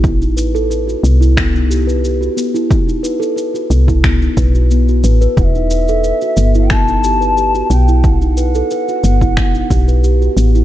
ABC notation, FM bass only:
X:1
M:4/4
L:1/8
Q:1/4=90
K:Em
V:1 name="FM bass" clef=bass
A,,,3 C,,4 z | z3 C,,2 B,,,2 A,,, | E,,,2 z G,,,4 B,,,- | B,,,2 z G,,,2 B,,,2 A,,, |]